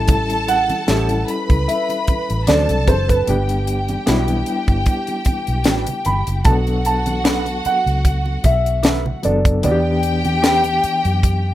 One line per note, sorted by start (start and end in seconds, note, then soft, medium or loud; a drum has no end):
0.00 0.71 A1 medium
0.00 0.65 G3 medium
0.00 0.66 C#4 medium
0.00 0.66 E4 medium
0.00 0.67 A4 medium
0.00 1.25 A4 medium
0.00 1.25 A5 medium
0.08 kick loud
0.08 closed hi-hat medium
0.08 muted conga soft
0.08 low conga medium
0.30 closed hi-hat medium
0.30 muted conga soft
0.48 1.24 F#5 loud
0.48 closed hi-hat medium
0.70 closed hi-hat soft
0.70 high conga medium
0.87 1.23 A1 medium
0.87 1.94 G3 medium
0.87 1.95 C#4 medium
0.87 1.05 E4 medium
0.87 1.96 E4 medium
0.87 1.05 G4 medium
0.87 1.96 A4 medium
0.87 1.06 C#5 medium
0.87 snare medium
0.87 closed hi-hat medium
0.87 muted conga soft
1.09 closed hi-hat soft
1.09 muted conga soft
1.28 2.46 B4 medium
1.28 2.46 B5 medium
1.28 closed hi-hat medium
1.50 1.66 C#2 medium
1.50 kick medium
1.50 closed hi-hat soft
1.68 2.44 E5 medium
1.68 closed hi-hat medium
1.68 muted conga soft
1.89 closed hi-hat soft
1.89 muted conga soft
2.08 muted fingered electric bass stroke soft
2.08 kick medium
2.08 closed hi-hat medium
2.08 high conga soft
2.30 2.46 A1 medium
2.30 closed hi-hat soft
2.47 2.66 D2 medium
2.47 3.12 F#3 medium
2.47 3.13 C4 medium
2.47 2.64 D4 medium
2.47 3.13 D4 medium
2.47 2.65 F#4 medium
2.47 3.26 A4 medium
2.47 3.13 A4 medium
2.47 2.65 C5 medium
2.47 2.85 D5 medium
2.47 3.26 A5 medium
2.47 snare medium
2.47 closed hi-hat medium
2.47 muted conga soft
2.47 high conga medium
2.69 2.85 C2 medium
2.69 closed hi-hat medium
2.69 low conga medium
2.87 3.22 F#1 medium
2.87 3.08 C5 medium
2.87 kick medium
2.87 closed hi-hat medium
2.87 high conga medium
3.08 6.02 B4 medium
3.08 kick medium
3.08 closed hi-hat medium
3.27 3.96 G1 medium
3.27 3.81 G3 medium
3.27 3.81 B3 medium
3.27 3.82 D4 medium
3.27 6.42 G4 medium
3.27 3.82 G4 medium
3.27 6.42 G5 medium
3.27 closed hi-hat medium
3.27 muted conga soft
3.27 low conga medium
3.49 closed hi-hat soft
3.49 muted conga soft
3.67 closed hi-hat medium
3.88 closed hi-hat soft
3.88 high conga medium
4.06 4.42 B1 medium
4.06 5.13 G3 medium
4.06 5.13 B3 medium
4.06 4.23 D4 medium
4.06 5.14 D4 medium
4.06 5.15 E4 medium
4.06 4.24 F#4 medium
4.06 4.24 B4 medium
4.06 snare medium
4.06 closed hi-hat medium
4.06 muted conga soft
4.28 closed hi-hat soft
4.28 high conga medium
4.46 closed hi-hat medium
4.68 4.84 G1 medium
4.68 kick medium
4.68 closed hi-hat soft
4.86 kick medium
4.86 closed hi-hat medium
5.07 closed hi-hat soft
5.07 muted conga soft
5.25 muted fingered electric bass stroke soft
5.25 kick medium
5.25 closed hi-hat medium
5.25 high conga soft
5.47 5.66 B1 medium
5.47 closed hi-hat soft
5.64 5.85 A1 medium
5.64 5.83 D4 medium
5.64 5.83 F#4 medium
5.64 5.83 B4 medium
5.64 snare loud
5.64 closed hi-hat medium
5.64 high conga medium
5.87 closed hi-hat medium
5.87 low conga medium
6.05 6.24 G1 medium
6.05 6.47 B5 medium
6.05 closed hi-hat medium
6.05 high conga medium
6.27 6.43 F#1 medium
6.27 closed hi-hat medium
6.44 7.61 B1 medium
6.44 7.52 F#3 medium
6.44 7.52 B3 medium
6.44 7.52 D4 medium
6.44 9.20 F#4 medium
6.44 7.53 A4 medium
6.44 9.20 F#5 medium
6.44 6.54 A5 medium
6.44 kick loud
6.44 closed hi-hat medium
6.44 muted conga soft
6.44 low conga medium
6.67 closed hi-hat soft
6.67 muted conga soft
6.85 7.68 A5 medium
6.85 closed hi-hat medium
7.06 closed hi-hat soft
7.06 high conga medium
7.24 7.42 D4 medium
7.24 7.42 A4 medium
7.24 7.42 B4 medium
7.24 snare loud
7.24 closed hi-hat medium
7.24 muted conga soft
7.46 closed hi-hat soft
7.46 muted conga soft
7.65 8.48 F#5 loud
7.65 muted fingered electric bass stroke soft
7.65 closed hi-hat medium
7.86 8.36 C#2 medium
7.86 closed hi-hat soft
8.05 kick medium
8.05 closed hi-hat medium
8.05 muted conga soft
8.26 muted conga soft
8.44 9.13 B1 medium
8.44 9.21 E5 medium
8.44 kick medium
8.44 closed hi-hat medium
8.44 high conga soft
8.66 closed hi-hat soft
8.83 9.00 D4 medium
8.83 9.01 A4 medium
8.83 9.01 B4 medium
8.83 snare loud
8.83 closed hi-hat medium
8.83 high conga medium
9.06 low conga medium
9.23 9.66 F#1 medium
9.23 9.51 F#3 medium
9.23 9.51 B3 medium
9.23 9.52 D4 medium
9.23 9.52 A4 medium
9.23 9.62 D5 medium
9.23 closed hi-hat medium
9.23 high conga medium
9.45 kick medium
9.45 closed hi-hat medium
9.62 10.80 E2 medium
9.62 10.70 E3 medium
9.62 10.70 B3 medium
9.62 10.70 D4 medium
9.62 9.72 F#4 medium
9.62 11.54 G4 medium
9.62 11.54 D5 medium
9.62 11.54 G5 loud
9.62 closed hi-hat medium
9.62 muted conga soft
9.62 low conga medium
9.71 10.74 G4 medium
10.03 closed hi-hat medium
10.25 closed hi-hat soft
10.25 high conga medium
10.42 10.60 D4 medium
10.42 10.60 G4 medium
10.42 10.60 B4 medium
10.42 snare loud
10.42 closed hi-hat medium
10.64 closed hi-hat soft
10.64 muted conga soft
10.84 muted fingered electric bass stroke soft
10.84 closed hi-hat soft
11.05 11.54 F#2 medium
11.05 closed hi-hat soft
11.23 kick medium
11.23 closed hi-hat medium
11.23 muted conga soft